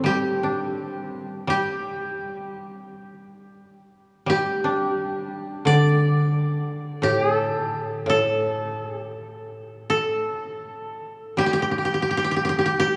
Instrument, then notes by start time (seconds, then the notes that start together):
koto
Already playing: A2 D#3 A3 C4 A4
0.04 G3 G4
0.43 D4
1.47 G3 G4
4.27 G3 G4
4.64 D4
5.65 D3 D5
7.02 A2 G4
7.33 A4
8.06 A2 A4
8.83 G#4
9.01 G4
9.90 A4
11.37 G3 G4
11.46 G4
11.53 G4
11.62 G4
11.71 G4
11.78 G4
11.85 G4
11.94 G4
12.02 G4
12.11 G4
12.17 G4
12.25 G4
12.31 G4
12.37 G4
12.45 G4
12.49 G4
12.59 G4
12.66 G4
12.80 G4